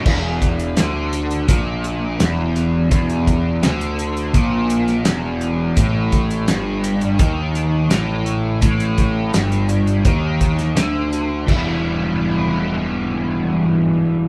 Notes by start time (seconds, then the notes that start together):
0.05 E1 E2, kick, crash
0.42 kick, closed hi-hat
0.59 closed hi-hat
0.77 D2 D3, snare, closed hi-hat
1.13 closed hi-hat
1.31 closed hi-hat
1.48 A#1 A#2, kick, closed hi-hat
1.84 closed hi-hat
2.20 E1 E2, snare, closed hi-hat
2.56 closed hi-hat
2.91 E1 E2, kick, closed hi-hat
3.10 closed hi-hat
3.27 kick, closed hi-hat
3.63 D2 D3, snare, closed hi-hat
3.81 closed hi-hat
3.99 closed hi-hat
4.17 closed hi-hat
4.34 A#1 A#2, kick, closed hi-hat
4.70 closed hi-hat
4.88 snare, closed hi-hat
5.05 E1 E2, snare, closed hi-hat
5.41 closed hi-hat
5.76 A1 A2, kick, closed hi-hat
6.12 kick, closed hi-hat
6.31 closed hi-hat
6.48 G1 G2, snare, closed hi-hat
6.84 closed hi-hat
7.01 closed hi-hat
7.19 D#2 D#3, kick, closed hi-hat
7.55 closed hi-hat
7.91 A1 A2, snare, closed hi-hat
8.26 closed hi-hat
8.61 A1 A2, kick, closed hi-hat
8.80 closed hi-hat
8.98 kick, closed hi-hat
9.33 G1 G2, snare, closed hi-hat
9.52 closed hi-hat
9.69 closed hi-hat
9.87 closed hi-hat
10.04 D#2 D#3, kick, closed hi-hat
10.41 kick, closed hi-hat
10.59 snare, closed hi-hat
10.76 D2 D3, snare, closed hi-hat
11.13 closed hi-hat
11.46 E1 E3 G3 B3 E4, kick, crash